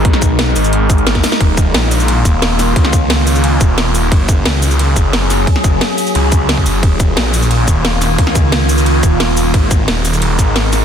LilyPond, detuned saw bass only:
\new Staff \with { instrumentName = "Detuned saw bass" } { \clef bass \time 4/4 \key ees \minor \tempo 4 = 177 ces,4. aes,,4. aes,,8 r8 | ees,,4 bes,,4. ees,,4. | des,2~ des,8 ees,,4. | ges,,4 des,4. ges,,4. |
r8 ges,,8 r4 des,4. ges,,8 | ees,,4 bes,,4. ees,,4. | des,2~ des,8 ees,,4. | aes,,4 ees,,4. aes,,4. | }